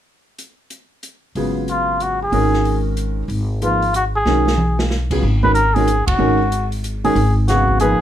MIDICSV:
0, 0, Header, 1, 5, 480
1, 0, Start_track
1, 0, Tempo, 322754
1, 567, Time_signature, 3, 2, 24, 8
1, 11912, End_track
2, 0, Start_track
2, 0, Title_t, "Muted trumpet"
2, 0, Program_c, 0, 59
2, 2529, Note_on_c, 0, 65, 68
2, 3007, Note_on_c, 0, 66, 68
2, 3029, Note_off_c, 0, 65, 0
2, 3292, Note_off_c, 0, 66, 0
2, 3307, Note_on_c, 0, 68, 75
2, 4191, Note_off_c, 0, 68, 0
2, 5411, Note_on_c, 0, 65, 72
2, 5838, Note_off_c, 0, 65, 0
2, 5885, Note_on_c, 0, 66, 76
2, 6014, Note_off_c, 0, 66, 0
2, 6186, Note_on_c, 0, 68, 82
2, 7246, Note_off_c, 0, 68, 0
2, 8085, Note_on_c, 0, 71, 83
2, 8233, Note_off_c, 0, 71, 0
2, 8242, Note_on_c, 0, 70, 84
2, 8540, Note_on_c, 0, 68, 91
2, 8563, Note_off_c, 0, 70, 0
2, 9018, Note_off_c, 0, 68, 0
2, 9027, Note_on_c, 0, 66, 75
2, 9928, Note_off_c, 0, 66, 0
2, 10477, Note_on_c, 0, 68, 76
2, 10919, Note_off_c, 0, 68, 0
2, 11129, Note_on_c, 0, 66, 75
2, 11573, Note_off_c, 0, 66, 0
2, 11607, Note_on_c, 0, 68, 80
2, 11912, Note_off_c, 0, 68, 0
2, 11912, End_track
3, 0, Start_track
3, 0, Title_t, "Grand piano"
3, 0, Program_c, 1, 0
3, 2024, Note_on_c, 1, 49, 51
3, 2030, Note_on_c, 1, 54, 46
3, 2033, Note_on_c, 1, 59, 47
3, 2037, Note_on_c, 1, 68, 57
3, 2039, Note_on_c, 1, 65, 47
3, 3352, Note_off_c, 1, 49, 0
3, 3354, Note_off_c, 1, 54, 0
3, 3356, Note_off_c, 1, 59, 0
3, 3358, Note_off_c, 1, 68, 0
3, 3359, Note_off_c, 1, 65, 0
3, 3451, Note_on_c, 1, 51, 59
3, 3457, Note_on_c, 1, 56, 53
3, 3463, Note_on_c, 1, 61, 52
3, 3464, Note_on_c, 1, 66, 52
3, 3474, Note_on_c, 1, 70, 69
3, 4785, Note_off_c, 1, 51, 0
3, 4788, Note_off_c, 1, 56, 0
3, 4791, Note_off_c, 1, 61, 0
3, 4792, Note_off_c, 1, 66, 0
3, 4796, Note_off_c, 1, 70, 0
3, 5379, Note_on_c, 1, 53, 42
3, 5381, Note_on_c, 1, 58, 36
3, 5387, Note_on_c, 1, 63, 36
3, 5388, Note_on_c, 1, 68, 40
3, 5400, Note_on_c, 1, 71, 45
3, 5648, Note_off_c, 1, 53, 0
3, 5649, Note_off_c, 1, 58, 0
3, 5652, Note_off_c, 1, 63, 0
3, 5653, Note_off_c, 1, 68, 0
3, 5658, Note_off_c, 1, 71, 0
3, 6341, Note_on_c, 1, 51, 58
3, 6346, Note_on_c, 1, 56, 54
3, 6351, Note_on_c, 1, 61, 56
3, 6353, Note_on_c, 1, 66, 51
3, 6359, Note_on_c, 1, 70, 68
3, 6609, Note_off_c, 1, 51, 0
3, 6611, Note_off_c, 1, 56, 0
3, 6614, Note_off_c, 1, 61, 0
3, 6615, Note_off_c, 1, 66, 0
3, 6618, Note_off_c, 1, 70, 0
3, 7598, Note_on_c, 1, 49, 51
3, 7603, Note_on_c, 1, 54, 51
3, 7606, Note_on_c, 1, 59, 48
3, 7614, Note_on_c, 1, 65, 51
3, 7616, Note_on_c, 1, 68, 62
3, 7754, Note_off_c, 1, 49, 0
3, 7757, Note_off_c, 1, 54, 0
3, 7758, Note_off_c, 1, 59, 0
3, 7762, Note_off_c, 1, 65, 0
3, 7763, Note_off_c, 1, 68, 0
3, 8070, Note_on_c, 1, 51, 57
3, 8078, Note_on_c, 1, 56, 53
3, 8080, Note_on_c, 1, 61, 50
3, 8086, Note_on_c, 1, 66, 53
3, 8086, Note_on_c, 1, 70, 66
3, 8230, Note_off_c, 1, 51, 0
3, 8234, Note_off_c, 1, 56, 0
3, 8235, Note_off_c, 1, 61, 0
3, 8238, Note_off_c, 1, 66, 0
3, 8238, Note_off_c, 1, 70, 0
3, 8564, Note_on_c, 1, 51, 66
3, 8565, Note_on_c, 1, 56, 54
3, 8567, Note_on_c, 1, 61, 57
3, 8574, Note_on_c, 1, 66, 58
3, 8577, Note_on_c, 1, 70, 69
3, 8717, Note_off_c, 1, 51, 0
3, 8717, Note_off_c, 1, 56, 0
3, 8718, Note_off_c, 1, 61, 0
3, 8722, Note_off_c, 1, 66, 0
3, 8723, Note_off_c, 1, 70, 0
3, 9197, Note_on_c, 1, 51, 65
3, 9199, Note_on_c, 1, 56, 60
3, 9200, Note_on_c, 1, 61, 64
3, 9214, Note_on_c, 1, 66, 62
3, 9216, Note_on_c, 1, 70, 74
3, 9475, Note_off_c, 1, 51, 0
3, 9476, Note_off_c, 1, 56, 0
3, 9477, Note_off_c, 1, 61, 0
3, 9484, Note_off_c, 1, 66, 0
3, 9485, Note_off_c, 1, 70, 0
3, 10475, Note_on_c, 1, 51, 59
3, 10476, Note_on_c, 1, 56, 54
3, 10482, Note_on_c, 1, 61, 58
3, 10486, Note_on_c, 1, 66, 57
3, 10490, Note_on_c, 1, 70, 64
3, 10631, Note_off_c, 1, 51, 0
3, 10631, Note_off_c, 1, 56, 0
3, 10634, Note_off_c, 1, 61, 0
3, 10636, Note_off_c, 1, 66, 0
3, 10638, Note_off_c, 1, 70, 0
3, 11139, Note_on_c, 1, 49, 58
3, 11140, Note_on_c, 1, 54, 51
3, 11146, Note_on_c, 1, 59, 52
3, 11147, Note_on_c, 1, 77, 54
3, 11152, Note_on_c, 1, 68, 62
3, 11593, Note_off_c, 1, 49, 0
3, 11594, Note_off_c, 1, 54, 0
3, 11597, Note_off_c, 1, 59, 0
3, 11597, Note_off_c, 1, 77, 0
3, 11600, Note_off_c, 1, 68, 0
3, 11609, Note_on_c, 1, 53, 65
3, 11613, Note_on_c, 1, 63, 57
3, 11615, Note_on_c, 1, 58, 56
3, 11623, Note_on_c, 1, 68, 57
3, 11628, Note_on_c, 1, 71, 74
3, 11879, Note_off_c, 1, 53, 0
3, 11881, Note_off_c, 1, 63, 0
3, 11882, Note_off_c, 1, 58, 0
3, 11886, Note_off_c, 1, 68, 0
3, 11889, Note_off_c, 1, 71, 0
3, 11912, End_track
4, 0, Start_track
4, 0, Title_t, "Upright bass"
4, 0, Program_c, 2, 32
4, 2012, Note_on_c, 2, 32, 71
4, 3392, Note_off_c, 2, 32, 0
4, 3449, Note_on_c, 2, 32, 74
4, 4831, Note_off_c, 2, 32, 0
4, 4880, Note_on_c, 2, 32, 79
4, 6266, Note_off_c, 2, 32, 0
4, 6327, Note_on_c, 2, 35, 79
4, 7708, Note_off_c, 2, 35, 0
4, 7771, Note_on_c, 2, 32, 81
4, 8973, Note_off_c, 2, 32, 0
4, 9032, Note_on_c, 2, 30, 66
4, 9196, Note_off_c, 2, 30, 0
4, 9204, Note_on_c, 2, 32, 79
4, 10584, Note_off_c, 2, 32, 0
4, 10639, Note_on_c, 2, 32, 88
4, 11844, Note_off_c, 2, 32, 0
4, 11912, End_track
5, 0, Start_track
5, 0, Title_t, "Drums"
5, 573, Note_on_c, 9, 42, 43
5, 722, Note_off_c, 9, 42, 0
5, 1047, Note_on_c, 9, 42, 39
5, 1196, Note_off_c, 9, 42, 0
5, 1531, Note_on_c, 9, 42, 48
5, 1679, Note_off_c, 9, 42, 0
5, 2015, Note_on_c, 9, 46, 34
5, 2164, Note_off_c, 9, 46, 0
5, 2496, Note_on_c, 9, 42, 36
5, 2645, Note_off_c, 9, 42, 0
5, 2979, Note_on_c, 9, 42, 41
5, 3128, Note_off_c, 9, 42, 0
5, 3459, Note_on_c, 9, 46, 34
5, 3607, Note_off_c, 9, 46, 0
5, 3769, Note_on_c, 9, 38, 27
5, 3917, Note_off_c, 9, 38, 0
5, 3945, Note_on_c, 9, 46, 34
5, 4093, Note_off_c, 9, 46, 0
5, 4415, Note_on_c, 9, 42, 43
5, 4563, Note_off_c, 9, 42, 0
5, 4902, Note_on_c, 9, 46, 33
5, 5050, Note_off_c, 9, 46, 0
5, 5381, Note_on_c, 9, 42, 40
5, 5529, Note_off_c, 9, 42, 0
5, 5686, Note_on_c, 9, 46, 30
5, 5835, Note_off_c, 9, 46, 0
5, 5862, Note_on_c, 9, 42, 45
5, 6010, Note_off_c, 9, 42, 0
5, 6333, Note_on_c, 9, 38, 38
5, 6481, Note_off_c, 9, 38, 0
5, 6654, Note_on_c, 9, 38, 53
5, 6802, Note_off_c, 9, 38, 0
5, 6805, Note_on_c, 9, 48, 47
5, 6953, Note_off_c, 9, 48, 0
5, 7124, Note_on_c, 9, 38, 65
5, 7272, Note_off_c, 9, 38, 0
5, 7295, Note_on_c, 9, 38, 49
5, 7443, Note_off_c, 9, 38, 0
5, 7595, Note_on_c, 9, 36, 65
5, 7597, Note_on_c, 9, 49, 58
5, 7743, Note_off_c, 9, 36, 0
5, 7746, Note_off_c, 9, 49, 0
5, 8075, Note_on_c, 9, 36, 42
5, 8224, Note_off_c, 9, 36, 0
5, 8255, Note_on_c, 9, 42, 45
5, 8404, Note_off_c, 9, 42, 0
5, 8564, Note_on_c, 9, 46, 35
5, 8712, Note_off_c, 9, 46, 0
5, 8738, Note_on_c, 9, 42, 51
5, 8887, Note_off_c, 9, 42, 0
5, 9034, Note_on_c, 9, 36, 71
5, 9037, Note_on_c, 9, 51, 66
5, 9183, Note_off_c, 9, 36, 0
5, 9186, Note_off_c, 9, 51, 0
5, 9695, Note_on_c, 9, 42, 45
5, 9844, Note_off_c, 9, 42, 0
5, 9994, Note_on_c, 9, 46, 36
5, 10143, Note_off_c, 9, 46, 0
5, 10173, Note_on_c, 9, 42, 50
5, 10322, Note_off_c, 9, 42, 0
5, 10478, Note_on_c, 9, 46, 35
5, 10627, Note_off_c, 9, 46, 0
5, 10649, Note_on_c, 9, 46, 41
5, 10798, Note_off_c, 9, 46, 0
5, 11124, Note_on_c, 9, 38, 32
5, 11127, Note_on_c, 9, 42, 46
5, 11273, Note_off_c, 9, 38, 0
5, 11276, Note_off_c, 9, 42, 0
5, 11422, Note_on_c, 9, 36, 48
5, 11570, Note_off_c, 9, 36, 0
5, 11596, Note_on_c, 9, 42, 49
5, 11745, Note_off_c, 9, 42, 0
5, 11912, End_track
0, 0, End_of_file